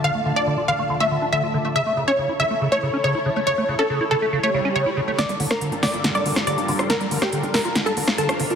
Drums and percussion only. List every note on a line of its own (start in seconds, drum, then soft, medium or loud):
5.19 snare soft
5.19 closed hi-hat medium
5.29 closed hi-hat soft
5.40 open hi-hat loud
5.51 cross-stick medium
5.51 snare soft
5.61 closed hi-hat medium
5.72 closed hi-hat soft
5.83 snare soft
5.83 open hi-hat loud
5.94 closed hi-hat soft
6.04 snare soft
6.04 closed hi-hat medium
6.15 closed hi-hat soft
6.26 open hi-hat loud
6.36 cross-stick medium
6.36 snare soft
6.47 closed hi-hat medium
6.58 closed hi-hat soft
6.68 open hi-hat loud
6.79 cross-stick medium
6.79 closed hi-hat soft
6.90 snare medium
6.90 closed hi-hat medium
7.01 closed hi-hat soft
7.11 open hi-hat loud
7.22 cross-stick medium
7.22 snare soft
7.33 closed hi-hat medium
7.43 closed hi-hat soft
7.54 snare medium
7.54 open hi-hat loud
7.65 closed hi-hat soft
7.75 snare medium
7.75 closed hi-hat medium
7.86 closed hi-hat soft
7.97 open hi-hat loud
8.08 cross-stick medium
8.08 snare medium
8.18 closed hi-hat medium
8.29 cross-stick medium
8.29 closed hi-hat soft
8.40 open hi-hat loud
8.50 closed hi-hat soft